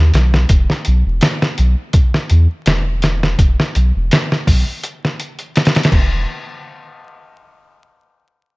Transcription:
Already playing: D#2
0.14 B1, snare, closed hi-hat
0.34 snare
0.49 E1, kick, closed hi-hat
0.70 snare
0.85 B1, closed hi-hat
1.06 E1
1.21 snare, closed hi-hat
1.42 snare
1.58 B1, closed hi-hat
1.93 kick, closed hi-hat
2.14 snare
2.30 E2, closed hi-hat
2.66 E1, snare, closed hi-hat
3.02 snare, closed hi-hat
3.23 snare
3.39 E1, kick, closed hi-hat
3.60 snare
3.75 B1, closed hi-hat
3.96 E1
4.11 snare, closed hi-hat
4.32 snare
4.47 B1, kick, open hi-hat
4.83 closed hi-hat
5.05 snare
5.20 closed hi-hat
5.39 closed hi-hat
5.56 snare, closed hi-hat
5.65 snare, closed hi-hat
5.75 snare, closed hi-hat
5.83 snare, closed hi-hat
5.92 E1, kick, crash

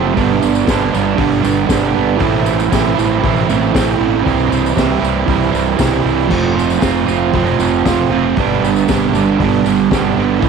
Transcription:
Already playing: F#1 C3 F3 A3 C4
0.14 G1 G2 D3 G3 B3, kick, open hi-hat, tambourine
0.18 D4
0.40 G1 B3 D4, tambourine
0.45 G3
0.55 tambourine
0.66 G1 D3 G3 B3, kick, snare, open hi-hat, tambourine
0.70 D4
0.81 tambourine
0.90 G1 D3 G3 B3 D4
0.94 G2, tambourine
1.16 G1 D3 G3 B3 D4, kick, open hi-hat
1.32 tambourine
1.42 G1 D3 G3 B3 D4, tambourine
1.46 G2
1.57 tambourine
1.67 G1 D3 G3 B3 D4, kick, snare, open hi-hat, tambourine
1.92 G3 B3 D4
1.97 G1
2.17 A1 A2 E3 A3 C4 E4, kick, open hi-hat
2.21 tambourine
2.43 A3 C4 E4, tambourine
2.60 tambourine
2.70 A1 E3 A3 C4 E4, kick, snare, open hi-hat, tambourine
2.94 A1 E3 A3 C4 E4
2.99 A2, tambourine
3.22 A1 E3 A3 C4 E4, kick, open hi-hat
3.37 tambourine
3.48 A1 A2 E3 A3 C4 E4, tambourine
3.63 tambourine
3.71 A1 E3 A3 C4, kick, open hi-hat
3.76 E4, snare, tambourine
3.97 A1 C4 E4
4.01 A3
4.22 C3 E3 G3 C4 E4
4.26 C2, kick, open hi-hat, tambourine
4.39 tambourine
4.48 C2 G3 C4 E4
4.52 tambourine
4.66 tambourine
4.73 C2 E3 G3 C4, kick
4.77 E4, snare, open hi-hat, tambourine
4.99 C2 C3 E3 G3 C4 E4
5.04 tambourine
5.26 C2 E3 G3 C4 E4, kick, open hi-hat
5.31 tambourine
5.43 tambourine
5.49 E3 G3 C4 E4
5.54 C2 C3, tambourine
5.68 tambourine
5.76 C2 E3 G3 C4 E4, kick, open hi-hat, tambourine
5.80 snare
6.01 C2 G3 C4 E4
6.06 tambourine
6.20 tambourine
6.28 F1 F3 A3 C4 F4, kick, crash
6.34 tambourine
6.53 C4 F4
6.58 A3, tambourine
6.70 tambourine
6.79 F1 F3 A3 C4, kick, snare, open hi-hat, tambourine
6.83 F4
6.97 tambourine
7.06 F1 F3 A3 C4 F4, tambourine
7.32 F1 F3 A3 C4, kick, open hi-hat
7.37 F4
7.47 tambourine
7.59 F1 A3 C4 F4, tambourine
7.63 F3
7.74 tambourine
7.84 F1 F3 A3 C4, kick, snare, open hi-hat, tambourine
7.88 F4
8.09 F1 C4 F4
8.15 A3
8.37 G1 G2 D3 G3 B3, kick, open hi-hat, tambourine
8.41 D4
8.61 G1 B3 D4, tambourine
8.66 G3
8.76 tambourine
8.87 G1 D3 G3 B3, kick, snare, open hi-hat, tambourine
8.91 D4
9.02 tambourine
9.12 G1 G3 B3 D4, tambourine
9.17 G2 D3
9.40 G1 D3 G3 B3, kick, open hi-hat
9.44 D4
9.54 tambourine
9.64 G1 D3 G3 B3 D4, tambourine
9.68 G2
9.81 tambourine
9.90 G1 D3 G3 B3, kick, snare, open hi-hat, tambourine
9.95 D4
10.14 G1 B3 D4
10.18 G3
10.38 A2 E3 A3 C4 E4, open hi-hat
10.43 A1, kick, tambourine

